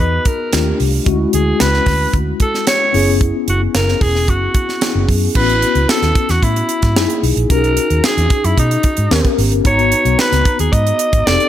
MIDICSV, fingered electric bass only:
0, 0, Header, 1, 2, 480
1, 0, Start_track
1, 0, Tempo, 536673
1, 953, Time_signature, 4, 2, 24, 8
1, 10274, End_track
2, 0, Start_track
2, 0, Title_t, "Fingered electric bass"
2, 0, Program_c, 0, 33
2, 0, Note_on_c, 0, 40, 80
2, 156, Note_off_c, 0, 40, 0
2, 477, Note_on_c, 0, 39, 79
2, 639, Note_off_c, 0, 39, 0
2, 718, Note_on_c, 0, 36, 96
2, 880, Note_off_c, 0, 36, 0
2, 953, Note_on_c, 0, 38, 87
2, 1116, Note_off_c, 0, 38, 0
2, 1196, Note_on_c, 0, 38, 87
2, 1358, Note_off_c, 0, 38, 0
2, 1437, Note_on_c, 0, 37, 84
2, 1599, Note_off_c, 0, 37, 0
2, 1669, Note_on_c, 0, 38, 72
2, 1834, Note_off_c, 0, 38, 0
2, 1911, Note_on_c, 0, 38, 65
2, 2075, Note_off_c, 0, 38, 0
2, 2630, Note_on_c, 0, 30, 93
2, 2958, Note_off_c, 0, 30, 0
2, 3109, Note_on_c, 0, 30, 91
2, 3273, Note_off_c, 0, 30, 0
2, 3349, Note_on_c, 0, 30, 78
2, 3513, Note_off_c, 0, 30, 0
2, 3590, Note_on_c, 0, 28, 82
2, 3828, Note_off_c, 0, 28, 0
2, 3828, Note_on_c, 0, 30, 68
2, 3993, Note_off_c, 0, 30, 0
2, 4428, Note_on_c, 0, 30, 80
2, 4511, Note_off_c, 0, 30, 0
2, 4550, Note_on_c, 0, 42, 94
2, 4714, Note_off_c, 0, 42, 0
2, 4788, Note_on_c, 0, 33, 95
2, 5034, Note_off_c, 0, 33, 0
2, 5145, Note_on_c, 0, 37, 87
2, 5228, Note_off_c, 0, 37, 0
2, 5387, Note_on_c, 0, 39, 77
2, 5470, Note_off_c, 0, 39, 0
2, 5628, Note_on_c, 0, 40, 81
2, 5711, Note_off_c, 0, 40, 0
2, 5748, Note_on_c, 0, 45, 72
2, 5912, Note_off_c, 0, 45, 0
2, 6108, Note_on_c, 0, 44, 75
2, 6227, Note_off_c, 0, 44, 0
2, 6227, Note_on_c, 0, 42, 85
2, 6310, Note_off_c, 0, 42, 0
2, 6467, Note_on_c, 0, 35, 94
2, 6550, Note_off_c, 0, 35, 0
2, 6587, Note_on_c, 0, 34, 80
2, 6670, Note_off_c, 0, 34, 0
2, 6708, Note_on_c, 0, 35, 80
2, 6954, Note_off_c, 0, 35, 0
2, 7070, Note_on_c, 0, 39, 82
2, 7152, Note_off_c, 0, 39, 0
2, 7310, Note_on_c, 0, 40, 87
2, 7392, Note_off_c, 0, 40, 0
2, 7552, Note_on_c, 0, 42, 74
2, 7633, Note_off_c, 0, 42, 0
2, 7670, Note_on_c, 0, 47, 81
2, 7834, Note_off_c, 0, 47, 0
2, 8031, Note_on_c, 0, 44, 74
2, 8113, Note_off_c, 0, 44, 0
2, 8148, Note_on_c, 0, 39, 93
2, 8231, Note_off_c, 0, 39, 0
2, 8392, Note_on_c, 0, 32, 95
2, 8513, Note_off_c, 0, 32, 0
2, 8513, Note_on_c, 0, 31, 79
2, 8595, Note_off_c, 0, 31, 0
2, 8631, Note_on_c, 0, 32, 95
2, 8876, Note_off_c, 0, 32, 0
2, 8990, Note_on_c, 0, 35, 89
2, 9072, Note_off_c, 0, 35, 0
2, 9232, Note_on_c, 0, 37, 89
2, 9314, Note_off_c, 0, 37, 0
2, 9475, Note_on_c, 0, 39, 72
2, 9556, Note_off_c, 0, 39, 0
2, 9595, Note_on_c, 0, 44, 90
2, 9758, Note_off_c, 0, 44, 0
2, 9954, Note_on_c, 0, 32, 92
2, 10035, Note_off_c, 0, 32, 0
2, 10078, Note_on_c, 0, 29, 92
2, 10158, Note_off_c, 0, 29, 0
2, 10274, End_track
0, 0, End_of_file